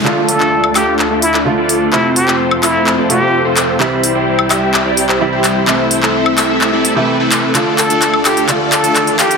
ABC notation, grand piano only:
X:1
M:4/4
L:1/16
Q:1/4=128
K:Ddor
V:1 name="Grand piano" clef=bass
[D,F,A,F]12 [D,F,A,F]4 | [C,F,A,A]8- [C,F,A,A]2 [C,F,A,F]6 | [C,E,G,E]12 [C,E,G,E]4 | [C,E,A,E]8- [C,E,A,E]2 z [C,E,A,E]4- [C,E,A,E] |
[D,F,A,F]8 [D,F,A,F]8 |]